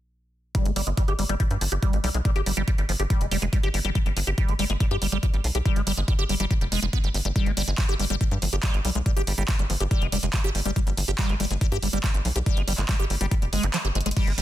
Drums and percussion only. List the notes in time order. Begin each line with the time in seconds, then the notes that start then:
0.55 kick, closed hi-hat
0.66 closed hi-hat
0.76 open hi-hat
0.87 closed hi-hat
0.97 kick, closed hi-hat
1.08 closed hi-hat
1.19 open hi-hat
1.29 closed hi-hat
1.40 kick, closed hi-hat
1.51 closed hi-hat
1.61 open hi-hat
1.72 closed hi-hat
1.83 kick, closed hi-hat
1.93 closed hi-hat
2.04 open hi-hat
2.14 closed hi-hat
2.25 kick, closed hi-hat
2.36 closed hi-hat
2.46 open hi-hat
2.57 closed hi-hat
2.68 kick, closed hi-hat
2.78 closed hi-hat
2.89 open hi-hat
3.00 closed hi-hat
3.10 kick, closed hi-hat
3.21 closed hi-hat
3.31 open hi-hat
3.42 closed hi-hat
3.53 kick, closed hi-hat
3.63 closed hi-hat
3.74 open hi-hat
3.85 closed hi-hat
3.95 kick, closed hi-hat
4.06 closed hi-hat
4.17 open hi-hat
4.27 closed hi-hat
4.38 kick, closed hi-hat
4.49 closed hi-hat
4.59 open hi-hat
4.70 closed hi-hat
4.80 kick, closed hi-hat
4.91 closed hi-hat
5.02 open hi-hat
5.12 closed hi-hat
5.23 kick, closed hi-hat
5.34 closed hi-hat
5.44 open hi-hat
5.55 closed hi-hat
5.66 kick, closed hi-hat
5.76 closed hi-hat
5.87 open hi-hat
5.97 closed hi-hat
6.08 kick, closed hi-hat
6.19 closed hi-hat
6.29 open hi-hat
6.40 closed hi-hat
6.51 kick, closed hi-hat
6.61 closed hi-hat
6.72 open hi-hat
6.83 closed hi-hat
6.93 kick, closed hi-hat
7.04 closed hi-hat
7.14 open hi-hat
7.25 closed hi-hat
7.36 kick, closed hi-hat
7.46 closed hi-hat
7.57 open hi-hat
7.68 closed hi-hat
7.78 kick, clap, closed hi-hat
7.89 closed hi-hat
8.00 open hi-hat
8.10 closed hi-hat
8.21 kick, closed hi-hat
8.31 closed hi-hat
8.42 open hi-hat
8.53 closed hi-hat
8.63 kick, clap, closed hi-hat
8.74 closed hi-hat
8.85 open hi-hat
8.95 closed hi-hat
9.06 kick, closed hi-hat
9.17 closed hi-hat
9.27 open hi-hat
9.38 closed hi-hat
9.49 kick, clap, closed hi-hat
9.59 closed hi-hat
9.70 open hi-hat
9.80 closed hi-hat
9.91 kick, closed hi-hat
10.02 closed hi-hat
10.12 open hi-hat
10.23 closed hi-hat
10.34 kick, clap, closed hi-hat
10.44 closed hi-hat
10.55 open hi-hat
10.66 closed hi-hat
10.76 kick, closed hi-hat
10.87 closed hi-hat
10.97 open hi-hat
11.08 closed hi-hat
11.19 kick, clap, closed hi-hat
11.29 closed hi-hat
11.40 open hi-hat
11.51 closed hi-hat
11.61 kick, closed hi-hat
11.72 closed hi-hat
11.83 open hi-hat
11.93 closed hi-hat
12.04 kick, clap, closed hi-hat
12.14 closed hi-hat
12.25 open hi-hat
12.36 closed hi-hat
12.46 kick, closed hi-hat
12.57 closed hi-hat
12.68 open hi-hat
12.78 clap, closed hi-hat
12.89 kick, clap, closed hi-hat
13.00 closed hi-hat
13.10 open hi-hat
13.21 closed hi-hat
13.31 kick, closed hi-hat
13.42 closed hi-hat
13.53 open hi-hat
13.63 closed hi-hat
13.74 clap, closed hi-hat
13.85 closed hi-hat
13.95 closed hi-hat
14.01 closed hi-hat
14.06 closed hi-hat
14.11 closed hi-hat
14.17 kick, closed hi-hat, crash
14.27 closed hi-hat
14.38 open hi-hat